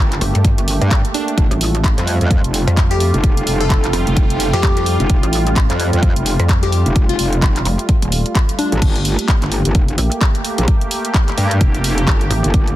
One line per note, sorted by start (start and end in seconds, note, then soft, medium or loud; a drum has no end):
0.00 0.20 G1 loud
0.00 8.78 A3 medium
0.00 1.34 A#3 medium
0.00 1.34 G4 medium
0.00 2.94 G4 medium
0.00 2.17 A5 medium
0.12 clap soft
0.12 closed hi-hat soft
0.21 0.33 G1 loud
0.21 open hi-hat medium
0.35 0.56 G2 medium
0.35 closed hi-hat soft
0.45 kick loud
0.45 closed hi-hat medium
0.58 0.79 G1 loud
0.58 closed hi-hat medium
0.68 open hi-hat loud
0.81 1.03 G2 loud
0.81 closed hi-hat soft
0.91 kick loud
0.91 clap loud
0.91 closed hi-hat medium
1.05 closed hi-hat soft
1.14 1.43 D4 medium
1.14 open hi-hat loud
1.28 closed hi-hat soft
1.38 1.49 F1 loud
1.38 8.78 G3 medium
1.38 8.82 F4 medium
1.38 8.78 F4 loud
1.38 kick loud
1.38 closed hi-hat medium
1.51 1.95 A1 medium
1.51 closed hi-hat medium
1.61 open hi-hat loud
1.75 closed hi-hat soft
1.84 8.82 A4 medium
1.84 8.82 G5 medium
1.84 kick loud
1.84 clap loud
1.84 closed hi-hat medium
1.98 2.19 F2 medium
1.98 clap soft
1.98 closed hi-hat medium
2.07 open hi-hat medium
2.21 2.42 F2 loud
2.21 closed hi-hat soft
2.31 kick loud
2.31 closed hi-hat medium
2.44 2.65 F1 loud
2.44 closed hi-hat medium
2.54 open hi-hat loud
2.67 3.12 F2 loud
2.67 closed hi-hat soft
2.77 kick loud
2.77 clap loud
2.77 closed hi-hat medium
2.91 2.97 G4 medium
2.91 closed hi-hat medium
3.00 3.09 G4 medium
3.00 open hi-hat loud
3.14 3.45 F1 loud
3.14 closed hi-hat soft
3.24 kick loud
3.24 closed hi-hat medium
3.37 closed hi-hat medium
3.47 3.92 F1 medium
3.47 open hi-hat loud
3.61 3.70 A4 medium
3.61 closed hi-hat soft
3.70 kick loud
3.70 clap loud
3.70 closed hi-hat medium
3.84 clap soft
3.84 closed hi-hat medium
3.93 4.05 F1 loud
3.93 open hi-hat medium
4.07 4.51 F1 loud
4.07 closed hi-hat soft
4.17 kick loud
4.17 closed hi-hat medium
4.30 closed hi-hat medium
4.40 open hi-hat loud
4.53 4.98 F2 loud
4.53 4.86 G4 loud
4.53 closed hi-hat soft
4.63 kick loud
4.63 clap loud
4.63 closed hi-hat medium
4.77 closed hi-hat medium
4.86 open hi-hat medium
5.00 5.08 F1 loud
5.00 closed hi-hat soft
5.10 5.21 F1 loud
5.10 kick loud
5.10 closed hi-hat medium
5.23 5.68 A1 loud
5.23 closed hi-hat medium
5.33 open hi-hat loud
5.47 closed hi-hat soft
5.56 kick loud
5.56 clap loud
5.56 closed hi-hat medium
5.70 5.91 F2 loud
5.70 clap soft
5.70 closed hi-hat medium
5.80 open hi-hat medium
5.93 6.14 F2 loud
5.93 closed hi-hat soft
6.03 kick loud
6.03 closed hi-hat medium
6.16 6.37 F1 loud
6.16 closed hi-hat medium
6.26 open hi-hat loud
6.39 6.84 F2 loud
6.39 closed hi-hat soft
6.49 kick loud
6.49 clap loud
6.49 closed hi-hat medium
6.63 6.69 G4 medium
6.63 closed hi-hat medium
6.72 6.81 G4 medium
6.72 open hi-hat medium
6.86 7.17 F1 loud
6.86 closed hi-hat soft
6.96 kick loud
6.96 closed hi-hat medium
7.09 7.15 F4 medium
7.09 closed hi-hat medium
7.19 7.64 F1 loud
7.19 7.28 F4 medium
7.19 open hi-hat loud
7.33 closed hi-hat soft
7.42 kick loud
7.42 clap loud
7.42 closed hi-hat medium
7.56 clap soft
7.56 closed hi-hat medium
7.65 7.77 F1 loud
7.65 open hi-hat medium
7.79 closed hi-hat soft
7.89 kick loud
7.89 closed hi-hat medium
8.02 8.23 D#1 loud
8.02 closed hi-hat medium
8.12 open hi-hat loud
8.26 closed hi-hat soft
8.35 kick loud
8.35 clap loud
8.35 closed hi-hat medium
8.49 closed hi-hat medium
8.59 8.82 D4 medium
8.59 open hi-hat medium
8.72 8.80 A1 loud
8.72 closed hi-hat soft
8.82 9.17 G1 loud
8.82 12.76 A3 medium
8.82 12.76 A#3 medium
8.82 12.76 G4 medium
8.82 kick loud
8.82 closed hi-hat medium
8.82 crash loud
8.96 closed hi-hat soft
9.05 open hi-hat loud
9.19 closed hi-hat medium
9.28 kick loud
9.28 clap loud
9.28 closed hi-hat medium
9.42 9.63 G1 loud
9.42 clap soft
9.42 closed hi-hat soft
9.52 open hi-hat medium
9.65 9.73 G1 loud
9.65 closed hi-hat medium
9.75 9.97 F1 loud
9.75 kick loud
9.75 closed hi-hat medium
9.88 closed hi-hat soft
9.98 10.09 A#1 loud
9.98 open hi-hat loud
10.12 closed hi-hat medium
10.21 kick loud
10.21 clap loud
10.21 closed hi-hat medium
10.35 closed hi-hat soft
10.45 open hi-hat loud
10.58 10.66 A#1 loud
10.58 closed hi-hat medium
10.68 kick loud
10.68 closed hi-hat medium
10.81 closed hi-hat soft
10.91 open hi-hat loud
11.05 closed hi-hat medium
11.14 kick loud
11.14 clap loud
11.14 closed hi-hat medium
11.28 clap soft
11.28 closed hi-hat soft
11.38 11.59 G2 loud
11.38 open hi-hat loud
11.51 closed hi-hat medium
11.61 12.06 F1 loud
11.61 kick loud
11.61 closed hi-hat medium
11.75 closed hi-hat soft
11.84 open hi-hat loud
11.98 closed hi-hat medium
12.07 12.29 G1 loud
12.07 kick loud
12.07 clap loud
12.07 closed hi-hat medium
12.21 closed hi-hat soft
12.31 12.42 A1 medium
12.31 open hi-hat loud
12.44 12.52 G1 loud
12.44 closed hi-hat medium
12.54 12.76 G1 loud
12.54 kick loud
12.54 closed hi-hat medium
12.67 closed hi-hat soft